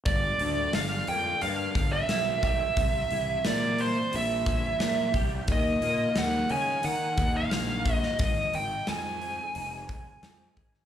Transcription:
0.06 0.31 G1 medium
0.06 1.75 G2 medium
0.06 0.74 D5 medium
0.06 kick loud
0.06 open hi-hat medium
0.39 0.66 D2 medium
0.39 2.09 D3 medium
0.39 open hi-hat soft
0.73 1.00 G1 medium
0.73 1.75 G3 medium
0.73 1.09 F5 medium
0.73 snare loud
0.73 open hi-hat medium
1.07 1.33 F2 medium
1.07 2.09 A#3 medium
1.07 1.43 G5 medium
1.07 open hi-hat medium
1.41 1.67 G2 medium
1.41 2.77 D4 medium
1.41 1.92 F5 loud
1.41 open hi-hat medium
1.75 2.01 G1 medium
1.75 2.77 G3 medium
1.75 kick medium
1.75 open hi-hat soft
1.93 2.42 E5 medium
2.09 2.60 B1 medium
2.09 2.77 A#3 medium
2.09 snare loud
2.09 open hi-hat medium
2.43 2.77 G4 medium
2.43 3.46 E5 medium
2.43 kick medium
2.43 open hi-hat medium
2.77 3.02 C2 medium
2.77 4.46 C3 medium
2.77 kick loud
2.77 open hi-hat medium
3.11 3.37 C2 medium
3.11 3.44 E3 medium
3.11 open hi-hat soft
3.44 3.96 A#2 medium
3.44 4.46 E3 medium
3.44 3.81 D5 medium
3.44 snare loud
3.44 open hi-hat medium
3.78 4.80 G3 medium
3.78 4.15 C5 medium
3.78 open hi-hat soft
4.13 4.64 A#1 medium
4.13 5.48 E4 medium
4.13 5.12 E5 medium
4.13 open hi-hat medium
4.46 5.48 E3 medium
4.46 kick medium
4.46 open hi-hat soft
4.80 5.06 A#2 medium
4.80 5.49 G3 medium
4.80 snare loud
4.80 open hi-hat medium
5.14 5.39 C2 medium
5.14 5.49 G4 medium
5.14 kick medium
5.14 open hi-hat soft
5.48 5.74 D#2 medium
5.48 6.15 D#3 medium
5.48 kick loud
5.48 open hi-hat medium
5.52 6.20 D#5 medium
5.81 6.07 A#2 medium
5.81 6.49 A#3 medium
5.81 open hi-hat soft
6.15 6.41 D#2 medium
6.15 7.17 D#3 medium
6.15 6.51 F#5 medium
6.15 snare loud
6.15 open hi-hat medium
6.49 6.76 C#3 medium
6.49 7.51 A#3 medium
6.49 6.85 G#5 medium
6.49 open hi-hat soft
6.83 7.09 D#3 medium
6.83 9.55 D#4 medium
6.83 7.37 F#5 loud
6.83 open hi-hat medium
7.17 7.43 D#2 medium
7.17 8.20 D#3 medium
7.17 kick medium
7.17 open hi-hat soft
7.37 7.95 F5 medium
7.51 8.03 A#1 medium
7.51 8.20 A#3 medium
7.51 snare loud
7.51 open hi-hat medium
7.85 8.20 F#4 medium
7.85 kick medium
7.85 open hi-hat soft
7.95 8.16 D#5 medium
8.03 snare soft
8.19 8.45 G#1 medium
8.19 9.89 G#2 medium
8.19 8.55 D#5 medium
8.19 kick loud
8.19 open hi-hat medium
8.53 8.79 G#1 medium
8.53 10.23 D#3 medium
8.53 8.89 G5 medium
8.53 open hi-hat soft
8.87 9.39 F2 medium
8.87 9.86 G#3 medium
8.87 10.53 G#5 medium
8.87 snare loud
8.87 open hi-hat medium
9.21 10.22 C4 medium
9.21 open hi-hat soft
9.55 10.06 F1 medium
9.55 10.85 D#4 medium
9.55 open hi-hat medium
9.88 10.85 G#3 medium
9.88 kick medium
9.88 open hi-hat soft
10.23 10.48 F2 medium
10.23 10.85 C4 medium
10.23 snare loud
10.23 open hi-hat medium
10.56 10.82 G#1 medium
10.56 10.85 G#4 medium
10.56 kick medium
10.56 open hi-hat soft
10.74 snare soft

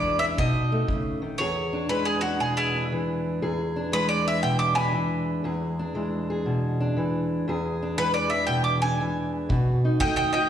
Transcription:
0.00 0.39 E2 medium
0.00 0.37 E3 medium
0.00 0.37 G#3 medium
0.00 0.20 D4 medium
0.00 0.20 D5 loud
0.19 0.37 D4 medium
0.19 0.24 E5 medium
0.38 0.87 B2 medium
0.38 1.38 D#4 medium
0.38 1.18 D#5 medium
0.38 kick medium
0.72 1.38 A3 medium
0.87 1.22 C#3 medium
0.87 kick medium
1.22 1.40 D#3 medium
1.38 3.42 E2 medium
1.38 3.42 G#4 medium
1.38 1.88 C#5 medium
1.73 2.22 D4 medium
1.89 2.92 E3 medium
1.89 3.79 G#3 medium
1.89 2.06 B4 medium
2.05 2.21 G#4 medium
2.21 2.75 D4 medium
2.21 2.39 F#4 medium
2.40 2.91 B2 medium
2.40 2.56 G#4 medium
2.57 2.83 E4 medium
2.57 2.84 G#4 medium
2.76 3.45 D4 medium
2.92 3.79 E3 medium
3.42 5.44 E2 medium
3.42 4.26 G#4 medium
3.76 4.76 D4 medium
3.92 4.92 E3 medium
3.92 5.82 G#3 medium
3.92 4.08 B4 loud
4.09 4.25 D5 medium
4.27 5.45 G#4 medium
4.27 4.42 E5 medium
4.43 4.93 B2 medium
4.43 4.59 G5 medium
4.59 4.75 D6 medium
4.75 5.47 D4 medium
4.75 5.23 G#5 medium
4.75 5.25 B5 medium
4.92 5.82 E3 medium
5.44 7.46 E2 medium
5.44 6.30 G#4 medium
5.79 6.79 D4 medium
5.94 6.95 E3 medium
5.94 7.45 G#3 medium
6.30 7.46 G#4 medium
6.45 6.96 B2 medium
6.80 7.45 D4 medium
6.97 7.45 E3 medium
7.48 9.51 E2 medium
7.48 8.30 G#4 medium
7.82 8.83 D4 medium
7.98 8.99 E3 medium
7.98 9.48 G#3 medium
7.98 8.13 B4 loud
8.14 8.30 D5 medium
8.30 9.48 G#4 medium
8.30 8.46 E5 medium
8.47 8.99 B2 medium
8.47 8.63 G5 medium
8.64 8.81 D6 medium
8.82 9.49 D4 medium
8.82 9.31 G#5 medium
9.01 9.49 E3 medium
9.49 10.00 B2 medium
9.49 10.36 F#4 medium
9.49 kick medium
9.85 10.49 D#4 medium
10.00 10.49 D#3 medium
10.00 10.49 A3 medium
10.00 10.15 D#5 medium
10.00 10.16 G5 loud
10.00 kick medium
10.16 10.31 D#5 medium
10.16 10.33 G5 medium
10.33 10.49 F#4 medium
10.33 10.49 D#5 medium
10.33 10.49 G5 medium

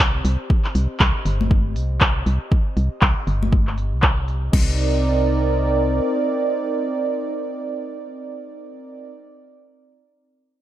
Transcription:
0.00 0.22 C2 medium
0.00 4.49 C4 medium
0.00 4.49 G4 medium
0.00 4.49 C5 medium
0.00 0.49 D5 medium
0.00 kick medium
0.25 0.37 C2 medium
0.25 open hi-hat medium
0.50 4.52 D#5 medium
0.50 kick loud
0.65 clap soft
0.75 0.87 C2 medium
0.75 open hi-hat medium
1.00 1.13 C2 loud
1.00 kick medium
1.00 clap loud
1.25 1.77 G1 medium
1.25 open hi-hat medium
1.41 high conga medium
1.51 kick loud
1.76 2.23 C2 medium
1.76 open hi-hat medium
2.01 kick medium
2.01 clap loud
2.26 2.39 C2 medium
2.26 open hi-hat medium
2.52 kick loud
2.77 2.89 C2 medium
2.77 open hi-hat medium
3.01 3.14 C2 medium
3.01 kick medium
3.01 clap loud
3.27 3.94 G1 medium
3.27 open hi-hat medium
3.43 high conga medium
3.52 kick loud
3.67 clap soft
3.78 open hi-hat medium
3.93 4.50 C2 medium
4.02 kick medium
4.02 clap loud
4.28 open hi-hat medium
4.53 6.01 C2 medium
4.53 9.12 C4 medium
4.53 9.12 D#4 medium
4.53 9.12 A#4 medium
4.53 9.12 D5 medium
4.53 kick loud
4.53 crash medium

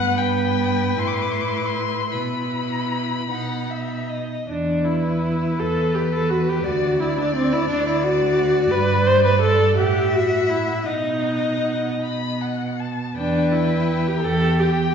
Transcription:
0.00 0.98 G2 medium
0.00 0.99 B3 medium
0.00 2.10 B4 medium
0.00 0.20 F#5 medium
0.18 1.00 G5 medium
0.99 2.15 A2 medium
0.99 2.11 E4 soft
0.99 1.09 C6 medium
1.08 1.16 D6 medium
1.14 1.23 C6 medium
1.21 1.33 D6 medium
1.31 1.42 C6 medium
1.41 1.50 D6 soft
1.48 1.59 C6 soft
1.57 1.67 D6 medium
1.65 2.14 C6 medium
2.12 3.31 B2 soft
2.12 3.29 E4 soft
2.12 3.22 B4 soft
2.12 4.11 B5 medium
3.31 4.26 B2 soft
3.31 4.27 D#4 soft
3.31 3.72 F#5 soft
3.70 4.11 E5 soft
4.09 4.48 D#5 soft
4.48 5.45 E2 medium
4.48 4.86 D4 medium
4.84 5.61 E4 medium
4.84 5.92 B4 soft
5.58 6.53 E2 medium
5.58 5.96 A4 medium
5.58 6.66 B4 soft
5.94 6.12 G4 medium
5.94 6.64 B4 soft
6.14 6.31 A4 medium
6.30 6.50 F#4 medium
6.49 6.66 G4 medium
6.64 7.57 D2 medium
6.64 7.01 F#4 medium
6.64 9.77 D5 medium
6.64 7.00 D5 soft
7.00 7.20 E4 medium
7.00 8.02 D5 soft
7.18 7.35 D4 medium
7.36 7.54 C4 medium
7.53 7.69 E4 medium
7.69 8.60 D2 medium
7.69 7.86 D4 medium
7.88 8.05 E4 medium
8.03 8.73 F#4 medium
8.03 8.71 D5 medium
8.71 9.64 G2 medium
8.71 9.08 B4 medium
9.06 9.24 C5 medium
9.06 9.75 D5 soft
9.24 9.41 B4 medium
9.41 9.76 A4 medium
9.75 10.74 A2 medium
9.75 10.15 G4 medium
9.75 10.87 E5 medium
9.75 10.12 F#5 soft
10.14 10.51 F#4 medium
10.14 10.86 F#5 soft
10.49 10.87 E4 medium
10.85 11.87 B2 medium
10.85 11.99 D#4 medium
10.85 12.59 D#5 soft
11.24 11.92 F#5 soft
12.01 13.03 B2 soft
12.01 12.43 B5 medium
12.41 12.81 F#5 soft
12.79 13.16 A5 soft
13.16 14.11 E2 medium
13.16 13.53 D4 medium
13.16 14.26 B4 medium
13.16 13.53 G5 soft
13.52 14.09 E4 medium
13.52 14.57 G5 soft
14.07 14.25 G4 medium
14.24 14.95 E2 medium
14.24 14.95 G4 medium
14.24 14.61 A4 medium
14.60 14.95 G4 medium
14.60 14.95 G5 soft

